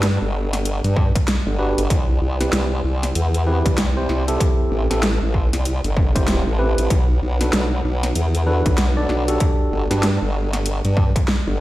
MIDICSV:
0, 0, Header, 1, 4, 480
1, 0, Start_track
1, 0, Tempo, 625000
1, 1463, Time_signature, 4, 2, 24, 8
1, 8910, End_track
2, 0, Start_track
2, 0, Title_t, "Tine electric piano"
2, 0, Program_c, 0, 4
2, 1221, Note_on_c, 0, 62, 86
2, 1221, Note_on_c, 0, 66, 83
2, 1221, Note_on_c, 0, 67, 82
2, 1221, Note_on_c, 0, 71, 95
2, 1379, Note_off_c, 0, 62, 0
2, 1379, Note_off_c, 0, 66, 0
2, 1379, Note_off_c, 0, 67, 0
2, 1379, Note_off_c, 0, 71, 0
2, 1847, Note_on_c, 0, 60, 71
2, 1847, Note_on_c, 0, 71, 82
2, 1848, Note_on_c, 0, 64, 67
2, 1848, Note_on_c, 0, 67, 66
2, 2058, Note_off_c, 0, 60, 0
2, 2058, Note_off_c, 0, 64, 0
2, 2058, Note_off_c, 0, 67, 0
2, 2058, Note_off_c, 0, 71, 0
2, 2663, Note_on_c, 0, 60, 89
2, 2663, Note_on_c, 0, 64, 79
2, 2663, Note_on_c, 0, 67, 80
2, 2663, Note_on_c, 0, 71, 92
2, 2883, Note_off_c, 0, 60, 0
2, 2883, Note_off_c, 0, 64, 0
2, 2883, Note_off_c, 0, 67, 0
2, 2883, Note_off_c, 0, 71, 0
2, 3047, Note_on_c, 0, 67, 73
2, 3048, Note_on_c, 0, 60, 82
2, 3048, Note_on_c, 0, 64, 78
2, 3048, Note_on_c, 0, 72, 94
2, 3253, Note_off_c, 0, 60, 0
2, 3253, Note_off_c, 0, 64, 0
2, 3253, Note_off_c, 0, 67, 0
2, 3254, Note_off_c, 0, 72, 0
2, 3287, Note_on_c, 0, 60, 90
2, 3287, Note_on_c, 0, 64, 83
2, 3287, Note_on_c, 0, 67, 85
2, 3287, Note_on_c, 0, 69, 102
2, 3733, Note_off_c, 0, 60, 0
2, 3733, Note_off_c, 0, 64, 0
2, 3733, Note_off_c, 0, 67, 0
2, 3733, Note_off_c, 0, 69, 0
2, 3766, Note_on_c, 0, 64, 68
2, 3767, Note_on_c, 0, 60, 76
2, 3767, Note_on_c, 0, 67, 69
2, 3768, Note_on_c, 0, 69, 85
2, 3879, Note_off_c, 0, 60, 0
2, 3879, Note_off_c, 0, 64, 0
2, 3879, Note_off_c, 0, 67, 0
2, 3880, Note_off_c, 0, 69, 0
2, 4726, Note_on_c, 0, 72, 97
2, 4727, Note_on_c, 0, 60, 91
2, 4727, Note_on_c, 0, 64, 85
2, 4727, Note_on_c, 0, 67, 83
2, 4937, Note_off_c, 0, 67, 0
2, 4937, Note_off_c, 0, 72, 0
2, 4938, Note_off_c, 0, 60, 0
2, 4938, Note_off_c, 0, 64, 0
2, 5062, Note_on_c, 0, 60, 94
2, 5062, Note_on_c, 0, 64, 87
2, 5062, Note_on_c, 0, 67, 85
2, 5062, Note_on_c, 0, 71, 104
2, 5283, Note_off_c, 0, 60, 0
2, 5283, Note_off_c, 0, 64, 0
2, 5283, Note_off_c, 0, 67, 0
2, 5283, Note_off_c, 0, 71, 0
2, 5689, Note_on_c, 0, 62, 74
2, 5689, Note_on_c, 0, 66, 67
2, 5689, Note_on_c, 0, 69, 66
2, 5689, Note_on_c, 0, 71, 81
2, 5899, Note_off_c, 0, 62, 0
2, 5899, Note_off_c, 0, 66, 0
2, 5899, Note_off_c, 0, 69, 0
2, 5899, Note_off_c, 0, 71, 0
2, 6502, Note_on_c, 0, 62, 86
2, 6502, Note_on_c, 0, 66, 82
2, 6503, Note_on_c, 0, 69, 78
2, 6503, Note_on_c, 0, 71, 96
2, 6723, Note_off_c, 0, 62, 0
2, 6723, Note_off_c, 0, 66, 0
2, 6723, Note_off_c, 0, 69, 0
2, 6723, Note_off_c, 0, 71, 0
2, 6888, Note_on_c, 0, 62, 82
2, 6888, Note_on_c, 0, 66, 74
2, 6888, Note_on_c, 0, 69, 73
2, 6888, Note_on_c, 0, 74, 93
2, 7093, Note_off_c, 0, 66, 0
2, 7093, Note_off_c, 0, 74, 0
2, 7094, Note_off_c, 0, 62, 0
2, 7094, Note_off_c, 0, 69, 0
2, 7127, Note_on_c, 0, 62, 89
2, 7128, Note_on_c, 0, 66, 83
2, 7128, Note_on_c, 0, 67, 83
2, 7128, Note_on_c, 0, 69, 99
2, 7573, Note_off_c, 0, 62, 0
2, 7573, Note_off_c, 0, 66, 0
2, 7573, Note_off_c, 0, 67, 0
2, 7573, Note_off_c, 0, 69, 0
2, 7608, Note_on_c, 0, 62, 75
2, 7608, Note_on_c, 0, 66, 69
2, 7608, Note_on_c, 0, 67, 69
2, 7608, Note_on_c, 0, 71, 85
2, 7720, Note_off_c, 0, 62, 0
2, 7720, Note_off_c, 0, 66, 0
2, 7720, Note_off_c, 0, 67, 0
2, 7720, Note_off_c, 0, 71, 0
2, 8910, End_track
3, 0, Start_track
3, 0, Title_t, "Wobble bass"
3, 0, Program_c, 1, 39
3, 0, Note_on_c, 1, 43, 95
3, 144, Note_off_c, 1, 43, 0
3, 167, Note_on_c, 1, 31, 91
3, 624, Note_off_c, 1, 31, 0
3, 647, Note_on_c, 1, 43, 95
3, 865, Note_off_c, 1, 43, 0
3, 1126, Note_on_c, 1, 31, 92
3, 1344, Note_off_c, 1, 31, 0
3, 1368, Note_on_c, 1, 31, 91
3, 1448, Note_off_c, 1, 31, 0
3, 1461, Note_on_c, 1, 36, 90
3, 1687, Note_off_c, 1, 36, 0
3, 1702, Note_on_c, 1, 36, 94
3, 1928, Note_off_c, 1, 36, 0
3, 1944, Note_on_c, 1, 36, 94
3, 2168, Note_off_c, 1, 36, 0
3, 2184, Note_on_c, 1, 36, 94
3, 2408, Note_off_c, 1, 36, 0
3, 2425, Note_on_c, 1, 40, 97
3, 2787, Note_off_c, 1, 40, 0
3, 2808, Note_on_c, 1, 36, 98
3, 3127, Note_off_c, 1, 36, 0
3, 3145, Note_on_c, 1, 36, 93
3, 3369, Note_off_c, 1, 36, 0
3, 3623, Note_on_c, 1, 33, 96
3, 3746, Note_off_c, 1, 33, 0
3, 3768, Note_on_c, 1, 33, 93
3, 3985, Note_off_c, 1, 33, 0
3, 4010, Note_on_c, 1, 33, 94
3, 4226, Note_off_c, 1, 33, 0
3, 4249, Note_on_c, 1, 36, 92
3, 4466, Note_off_c, 1, 36, 0
3, 4489, Note_on_c, 1, 31, 95
3, 4946, Note_off_c, 1, 31, 0
3, 4969, Note_on_c, 1, 33, 94
3, 5186, Note_off_c, 1, 33, 0
3, 5209, Note_on_c, 1, 33, 93
3, 5288, Note_off_c, 1, 33, 0
3, 5302, Note_on_c, 1, 35, 90
3, 5528, Note_off_c, 1, 35, 0
3, 5546, Note_on_c, 1, 35, 93
3, 5769, Note_off_c, 1, 35, 0
3, 5786, Note_on_c, 1, 35, 95
3, 6009, Note_off_c, 1, 35, 0
3, 6025, Note_on_c, 1, 35, 93
3, 6249, Note_off_c, 1, 35, 0
3, 6263, Note_on_c, 1, 40, 94
3, 6626, Note_off_c, 1, 40, 0
3, 6649, Note_on_c, 1, 35, 96
3, 6968, Note_off_c, 1, 35, 0
3, 6985, Note_on_c, 1, 35, 93
3, 7209, Note_off_c, 1, 35, 0
3, 7464, Note_on_c, 1, 31, 92
3, 7586, Note_off_c, 1, 31, 0
3, 7610, Note_on_c, 1, 43, 96
3, 7826, Note_off_c, 1, 43, 0
3, 7850, Note_on_c, 1, 31, 91
3, 8306, Note_off_c, 1, 31, 0
3, 8331, Note_on_c, 1, 43, 92
3, 8547, Note_off_c, 1, 43, 0
3, 8811, Note_on_c, 1, 31, 93
3, 8910, Note_off_c, 1, 31, 0
3, 8910, End_track
4, 0, Start_track
4, 0, Title_t, "Drums"
4, 22, Note_on_c, 9, 38, 116
4, 22, Note_on_c, 9, 42, 65
4, 99, Note_off_c, 9, 38, 0
4, 99, Note_off_c, 9, 42, 0
4, 409, Note_on_c, 9, 40, 38
4, 409, Note_on_c, 9, 42, 54
4, 486, Note_off_c, 9, 40, 0
4, 486, Note_off_c, 9, 42, 0
4, 503, Note_on_c, 9, 42, 65
4, 579, Note_off_c, 9, 42, 0
4, 648, Note_on_c, 9, 42, 35
4, 725, Note_off_c, 9, 42, 0
4, 741, Note_on_c, 9, 36, 104
4, 818, Note_off_c, 9, 36, 0
4, 887, Note_on_c, 9, 36, 102
4, 888, Note_on_c, 9, 42, 54
4, 964, Note_off_c, 9, 36, 0
4, 964, Note_off_c, 9, 42, 0
4, 983, Note_on_c, 9, 38, 115
4, 983, Note_on_c, 9, 42, 65
4, 1060, Note_off_c, 9, 38, 0
4, 1060, Note_off_c, 9, 42, 0
4, 1368, Note_on_c, 9, 42, 53
4, 1445, Note_off_c, 9, 42, 0
4, 1461, Note_on_c, 9, 36, 116
4, 1462, Note_on_c, 9, 42, 64
4, 1538, Note_off_c, 9, 36, 0
4, 1539, Note_off_c, 9, 42, 0
4, 1848, Note_on_c, 9, 40, 37
4, 1848, Note_on_c, 9, 42, 50
4, 1925, Note_off_c, 9, 40, 0
4, 1925, Note_off_c, 9, 42, 0
4, 1942, Note_on_c, 9, 38, 120
4, 1942, Note_on_c, 9, 42, 66
4, 2019, Note_off_c, 9, 38, 0
4, 2019, Note_off_c, 9, 42, 0
4, 2329, Note_on_c, 9, 40, 37
4, 2329, Note_on_c, 9, 42, 51
4, 2406, Note_off_c, 9, 40, 0
4, 2406, Note_off_c, 9, 42, 0
4, 2422, Note_on_c, 9, 42, 62
4, 2499, Note_off_c, 9, 42, 0
4, 2569, Note_on_c, 9, 42, 36
4, 2645, Note_off_c, 9, 42, 0
4, 2808, Note_on_c, 9, 36, 107
4, 2808, Note_on_c, 9, 42, 55
4, 2885, Note_off_c, 9, 36, 0
4, 2885, Note_off_c, 9, 42, 0
4, 2902, Note_on_c, 9, 38, 117
4, 2902, Note_on_c, 9, 42, 64
4, 2978, Note_off_c, 9, 38, 0
4, 2978, Note_off_c, 9, 42, 0
4, 3143, Note_on_c, 9, 40, 35
4, 3219, Note_off_c, 9, 40, 0
4, 3288, Note_on_c, 9, 42, 53
4, 3365, Note_off_c, 9, 42, 0
4, 3382, Note_on_c, 9, 36, 118
4, 3384, Note_on_c, 9, 42, 64
4, 3459, Note_off_c, 9, 36, 0
4, 3461, Note_off_c, 9, 42, 0
4, 3769, Note_on_c, 9, 40, 35
4, 3769, Note_on_c, 9, 42, 50
4, 3846, Note_off_c, 9, 40, 0
4, 3846, Note_off_c, 9, 42, 0
4, 3863, Note_on_c, 9, 38, 118
4, 3863, Note_on_c, 9, 42, 61
4, 3940, Note_off_c, 9, 38, 0
4, 3940, Note_off_c, 9, 42, 0
4, 4102, Note_on_c, 9, 36, 62
4, 4178, Note_off_c, 9, 36, 0
4, 4249, Note_on_c, 9, 40, 36
4, 4249, Note_on_c, 9, 42, 50
4, 4326, Note_off_c, 9, 40, 0
4, 4326, Note_off_c, 9, 42, 0
4, 4343, Note_on_c, 9, 42, 61
4, 4419, Note_off_c, 9, 42, 0
4, 4488, Note_on_c, 9, 42, 34
4, 4565, Note_off_c, 9, 42, 0
4, 4582, Note_on_c, 9, 36, 103
4, 4659, Note_off_c, 9, 36, 0
4, 4728, Note_on_c, 9, 36, 102
4, 4728, Note_on_c, 9, 42, 51
4, 4804, Note_off_c, 9, 36, 0
4, 4805, Note_off_c, 9, 42, 0
4, 4821, Note_on_c, 9, 38, 118
4, 4821, Note_on_c, 9, 42, 61
4, 4898, Note_off_c, 9, 38, 0
4, 4898, Note_off_c, 9, 42, 0
4, 5208, Note_on_c, 9, 42, 50
4, 5285, Note_off_c, 9, 42, 0
4, 5302, Note_on_c, 9, 36, 116
4, 5303, Note_on_c, 9, 42, 62
4, 5379, Note_off_c, 9, 36, 0
4, 5380, Note_off_c, 9, 42, 0
4, 5689, Note_on_c, 9, 40, 35
4, 5689, Note_on_c, 9, 42, 49
4, 5766, Note_off_c, 9, 40, 0
4, 5766, Note_off_c, 9, 42, 0
4, 5783, Note_on_c, 9, 38, 114
4, 5783, Note_on_c, 9, 42, 62
4, 5860, Note_off_c, 9, 38, 0
4, 5860, Note_off_c, 9, 42, 0
4, 6170, Note_on_c, 9, 40, 37
4, 6170, Note_on_c, 9, 42, 50
4, 6246, Note_off_c, 9, 40, 0
4, 6246, Note_off_c, 9, 42, 0
4, 6263, Note_on_c, 9, 42, 60
4, 6340, Note_off_c, 9, 42, 0
4, 6410, Note_on_c, 9, 42, 33
4, 6487, Note_off_c, 9, 42, 0
4, 6649, Note_on_c, 9, 36, 102
4, 6649, Note_on_c, 9, 42, 51
4, 6725, Note_off_c, 9, 36, 0
4, 6726, Note_off_c, 9, 42, 0
4, 6742, Note_on_c, 9, 38, 114
4, 6742, Note_on_c, 9, 42, 62
4, 6819, Note_off_c, 9, 38, 0
4, 6819, Note_off_c, 9, 42, 0
4, 6983, Note_on_c, 9, 40, 35
4, 7059, Note_off_c, 9, 40, 0
4, 7128, Note_on_c, 9, 42, 49
4, 7205, Note_off_c, 9, 42, 0
4, 7222, Note_on_c, 9, 42, 60
4, 7223, Note_on_c, 9, 36, 108
4, 7299, Note_off_c, 9, 42, 0
4, 7300, Note_off_c, 9, 36, 0
4, 7610, Note_on_c, 9, 40, 37
4, 7610, Note_on_c, 9, 42, 49
4, 7686, Note_off_c, 9, 40, 0
4, 7686, Note_off_c, 9, 42, 0
4, 7704, Note_on_c, 9, 38, 108
4, 7704, Note_on_c, 9, 42, 61
4, 7780, Note_off_c, 9, 38, 0
4, 7780, Note_off_c, 9, 42, 0
4, 8090, Note_on_c, 9, 40, 38
4, 8090, Note_on_c, 9, 42, 48
4, 8167, Note_off_c, 9, 40, 0
4, 8167, Note_off_c, 9, 42, 0
4, 8184, Note_on_c, 9, 42, 61
4, 8261, Note_off_c, 9, 42, 0
4, 8330, Note_on_c, 9, 42, 32
4, 8407, Note_off_c, 9, 42, 0
4, 8423, Note_on_c, 9, 36, 97
4, 8500, Note_off_c, 9, 36, 0
4, 8569, Note_on_c, 9, 36, 97
4, 8570, Note_on_c, 9, 42, 50
4, 8646, Note_off_c, 9, 36, 0
4, 8647, Note_off_c, 9, 42, 0
4, 8664, Note_on_c, 9, 38, 113
4, 8741, Note_off_c, 9, 38, 0
4, 8910, End_track
0, 0, End_of_file